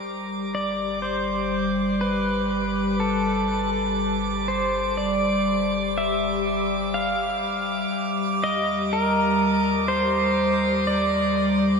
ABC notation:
X:1
M:4/4
L:1/16
Q:1/4=61
K:Gmix
V:1 name="Synth texture"
d'16- | d'16- | d'16 |]
V:2 name="Pedal steel guitar"
z2 d2 c4 B4 A3 z | z2 c2 d4 e4 f3 z | z2 _e2 _B4 c4 d3 z |]
V:3 name="Synth drone" clef=bass
G,16- | G,16- | G,16 |]
V:4 name="Sub bass" clef=bass
G,,,16- | G,,,16 | _E,,16 |]